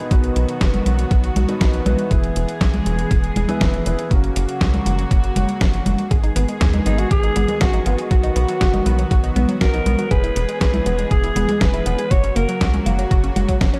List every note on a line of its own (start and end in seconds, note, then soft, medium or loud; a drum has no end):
0.00 2.07 D#3 medium
0.00 4.07 B3 medium
0.11 0.30 B1 medium
0.11 1.46 B2 medium
0.11 2.09 F#3 medium
0.11 1.46 B3 medium
0.11 1.46 D#4 medium
0.11 1.46 F#4 medium
0.11 2.09 F#4 medium
0.11 1.46 B4 medium
0.11 kick loud
0.11 closed hi-hat medium
0.24 closed hi-hat soft
0.36 0.46 B1 loud
0.36 closed hi-hat medium
0.49 closed hi-hat soft
0.61 0.80 F#1 medium
0.61 kick loud
0.61 snare loud
0.61 closed hi-hat medium
0.74 closed hi-hat soft
0.74 high conga medium
0.86 1.05 B1 medium
0.86 closed hi-hat medium
0.99 closed hi-hat soft
1.11 1.30 B1 medium
1.11 kick loud
1.11 closed hi-hat medium
1.24 closed hi-hat soft
1.36 1.46 B1 medium
1.36 closed hi-hat medium
1.36 high conga medium
1.49 1.83 B2 medium
1.49 1.83 B3 medium
1.49 1.83 D#4 medium
1.49 1.83 F#4 medium
1.49 1.83 B4 loud
1.49 closed hi-hat soft
1.61 1.80 B1 medium
1.61 kick loud
1.61 snare loud
1.61 closed hi-hat medium
1.74 closed hi-hat soft
1.86 1.96 B1 medium
1.86 2.08 E3 medium
1.86 2.08 B3 medium
1.86 2.08 D#4 medium
1.86 2.08 F#4 medium
1.86 2.08 B4 loud
1.86 closed hi-hat medium
1.86 high conga medium
1.99 closed hi-hat soft
2.11 2.30 E1 medium
2.11 4.09 E3 medium
2.11 3.46 E3 medium
2.11 4.09 G#3 medium
2.11 3.46 B3 medium
2.11 3.46 E4 medium
2.11 4.09 G#4 medium
2.11 3.46 G#4 medium
2.11 3.46 B4 medium
2.11 kick loud
2.11 closed hi-hat medium
2.24 closed hi-hat soft
2.36 2.46 E1 loud
2.36 closed hi-hat medium
2.49 closed hi-hat soft
2.61 2.80 B1 medium
2.61 kick loud
2.61 snare loud
2.61 closed hi-hat medium
2.74 closed hi-hat soft
2.74 high conga medium
2.86 3.05 E1 medium
2.86 closed hi-hat medium
2.99 closed hi-hat soft
3.11 3.30 E1 medium
3.11 kick loud
3.11 closed hi-hat medium
3.24 closed hi-hat soft
3.36 3.46 E1 medium
3.36 closed hi-hat medium
3.36 high conga medium
3.48 3.83 E3 medium
3.48 3.83 B3 medium
3.48 3.83 E4 medium
3.48 3.83 G#4 medium
3.48 3.83 B4 loud
3.48 closed hi-hat soft
3.48 high conga medium
3.61 3.80 E1 medium
3.61 kick loud
3.61 snare loud
3.61 closed hi-hat medium
3.74 closed hi-hat soft
3.86 3.96 E1 medium
3.86 4.08 B3 medium
3.86 4.08 E4 medium
3.86 4.08 G#4 medium
3.86 4.08 B4 loud
3.86 closed hi-hat medium
3.99 closed hi-hat soft
4.11 4.30 F#1 medium
4.11 6.09 C#3 medium
4.11 6.09 F#3 medium
4.11 6.09 A#3 medium
4.11 5.46 A#3 medium
4.11 5.46 C#4 medium
4.11 6.09 F#4 medium
4.11 5.46 F#4 medium
4.11 5.46 A#4 medium
4.11 kick loud
4.11 closed hi-hat medium
4.24 closed hi-hat soft
4.36 4.46 F#1 loud
4.36 closed hi-hat medium
4.49 closed hi-hat soft
4.61 4.80 C#2 medium
4.61 kick loud
4.61 snare loud
4.61 closed hi-hat medium
4.74 closed hi-hat soft
4.74 high conga medium
4.86 5.05 F#1 medium
4.86 closed hi-hat medium
4.99 closed hi-hat soft
5.11 5.30 F#1 medium
5.11 kick loud
5.11 closed hi-hat medium
5.24 closed hi-hat soft
5.36 5.46 F#1 medium
5.36 closed hi-hat medium
5.36 high conga medium
5.49 closed hi-hat soft
5.61 5.80 F#1 medium
5.61 kick loud
5.61 snare loud
5.61 closed hi-hat medium
5.74 closed hi-hat soft
5.86 5.96 F#1 medium
5.86 closed hi-hat medium
5.86 high conga medium
5.99 closed hi-hat soft
6.11 6.30 G#1 loud
6.11 10.07 D#3 medium
6.11 8.09 G#3 medium
6.11 12.07 B3 medium
6.11 6.23 G#4 loud
6.11 8.09 G#4 medium
6.11 kick loud
6.11 closed hi-hat medium
6.23 6.32 D#4 medium
6.23 closed hi-hat soft
6.36 6.46 G#1 loud
6.36 6.48 B3 loud
6.36 closed hi-hat medium
6.48 6.57 G#3 medium
6.48 closed hi-hat soft
6.61 6.80 D#2 medium
6.61 6.73 G#4 loud
6.61 kick loud
6.61 snare loud
6.61 closed hi-hat medium
6.73 6.82 D#4 medium
6.73 closed hi-hat soft
6.73 high conga medium
6.86 7.05 G#1 medium
6.86 6.98 B3 loud
6.86 7.00 D#4 medium
6.86 closed hi-hat medium
6.98 7.07 G#3 medium
6.98 7.11 F#4 medium
6.98 closed hi-hat soft
7.11 7.30 G#1 medium
7.11 7.23 G#4 loud
7.11 7.58 G#4 loud
7.11 kick loud
7.11 closed hi-hat medium
7.23 7.32 D#4 medium
7.23 closed hi-hat soft
7.36 7.46 G#1 medium
7.36 7.48 B3 loud
7.36 closed hi-hat medium
7.36 high conga medium
7.48 7.57 G#3 medium
7.48 closed hi-hat soft
7.48 high conga medium
7.61 7.80 G#1 medium
7.61 7.85 F#4 loud
7.61 7.73 G#4 medium
7.61 kick loud
7.61 snare loud
7.61 closed hi-hat medium
7.73 7.82 D#4 medium
7.73 closed hi-hat soft
7.86 7.96 G#1 medium
7.86 7.98 B3 loud
7.86 9.32 F#4 loud
7.86 closed hi-hat medium
7.98 8.07 G#3 medium
7.98 closed hi-hat soft
8.11 8.30 B1 medium
8.11 10.09 F#3 medium
8.11 8.23 F#4 loud
8.11 10.09 F#4 medium
8.11 kick loud
8.11 closed hi-hat medium
8.23 8.32 D#4 medium
8.23 closed hi-hat soft
8.36 8.46 B1 loud
8.36 8.48 B3 loud
8.36 closed hi-hat medium
8.48 8.57 F#3 medium
8.48 closed hi-hat soft
8.61 8.80 F#1 medium
8.61 8.73 F#4 loud
8.61 kick loud
8.61 snare loud
8.61 closed hi-hat medium
8.74 8.82 D#4 medium
8.74 closed hi-hat soft
8.74 high conga medium
8.86 9.05 B1 medium
8.86 8.98 B3 loud
8.86 closed hi-hat medium
8.99 9.07 F#3 medium
8.99 closed hi-hat soft
9.11 9.30 B1 medium
9.11 9.23 F#4 loud
9.11 kick loud
9.11 closed hi-hat medium
9.24 9.32 D#4 medium
9.24 closed hi-hat soft
9.36 9.46 B1 medium
9.36 9.48 B3 loud
9.36 closed hi-hat medium
9.36 high conga medium
9.49 9.57 F#3 medium
9.49 closed hi-hat soft
9.61 9.80 B1 medium
9.61 9.73 F#4 medium
9.61 10.08 A#4 medium
9.61 kick loud
9.61 snare loud
9.61 closed hi-hat medium
9.74 9.82 D#4 medium
9.74 closed hi-hat soft
9.86 9.96 B1 medium
9.86 9.98 B3 loud
9.86 closed hi-hat medium
9.86 high conga medium
9.99 10.07 F#3 medium
9.99 closed hi-hat soft
10.11 10.30 E1 medium
10.11 12.09 E3 medium
10.11 12.09 G#3 medium
10.11 10.23 G#4 loud
10.11 12.09 G#4 medium
10.11 10.57 B4 loud
10.11 kick loud
10.11 closed hi-hat medium
10.24 10.32 E4 medium
10.24 closed hi-hat soft
10.36 10.46 E1 loud
10.36 10.48 B3 loud
10.36 closed hi-hat medium
10.49 10.57 G#3 medium
10.49 closed hi-hat soft
10.61 10.80 B1 medium
10.61 10.73 G#4 loud
10.61 11.08 B4 loud
10.61 kick loud
10.61 snare loud
10.61 closed hi-hat medium
10.74 10.82 E4 medium
10.74 closed hi-hat soft
10.74 high conga medium
10.86 11.05 E1 medium
10.86 10.98 B3 loud
10.86 closed hi-hat medium
10.99 11.07 G#3 medium
10.99 closed hi-hat soft
11.11 11.30 E1 medium
11.11 11.23 G#4 loud
11.11 11.63 G#4 medium
11.11 kick loud
11.11 closed hi-hat medium
11.24 11.32 E4 medium
11.24 closed hi-hat soft
11.36 11.46 E1 medium
11.36 11.48 B3 loud
11.36 closed hi-hat medium
11.36 high conga medium
11.49 11.57 G#3 medium
11.49 closed hi-hat soft
11.49 high conga medium
11.61 11.80 E1 medium
11.61 11.73 G#4 medium
11.61 12.13 B4 loud
11.61 kick loud
11.61 snare loud
11.61 closed hi-hat medium
11.74 11.82 E4 medium
11.74 closed hi-hat soft
11.86 11.96 E1 medium
11.86 11.98 B3 loud
11.86 closed hi-hat loud
11.99 12.07 G#3 medium
11.99 closed hi-hat soft
12.11 12.30 F#1 medium
12.11 13.80 C#3 medium
12.11 13.80 F#3 medium
12.11 13.80 A#3 medium
12.11 12.23 F#4 loud
12.11 13.80 F#4 medium
12.11 12.38 C#5 loud
12.11 kick loud
12.11 closed hi-hat medium
12.24 12.32 C#4 medium
12.24 closed hi-hat soft
12.36 12.46 F#1 loud
12.36 12.48 A#3 loud
12.36 12.86 A#4 loud
12.36 closed hi-hat medium
12.49 12.57 F#3 medium
12.49 closed hi-hat soft
12.61 12.80 C#2 medium
12.61 12.73 F#4 loud
12.61 kick loud
12.61 snare loud
12.61 closed hi-hat medium
12.74 12.82 C#4 medium
12.74 closed hi-hat soft
12.74 high conga medium
12.86 13.05 F#1 medium
12.86 12.98 A#3 loud
12.86 closed hi-hat loud
12.99 13.07 F#3 medium
12.99 closed hi-hat soft
13.11 13.30 F#1 medium
13.11 13.23 F#4 loud
13.11 kick loud
13.11 closed hi-hat medium
13.24 13.32 C#4 medium
13.24 closed hi-hat soft
13.36 13.46 F#1 medium
13.36 13.45 F#4 medium
13.36 closed hi-hat medium
13.36 high conga medium
13.48 13.60 F#3 loud
13.48 kick medium
13.48 closed hi-hat soft
13.61 13.71 F#1 loud
13.61 13.66 C#4 medium
13.61 kick loud
13.61 snare loud
13.61 closed hi-hat medium
13.74 13.80 C#4 loud
13.74 closed hi-hat soft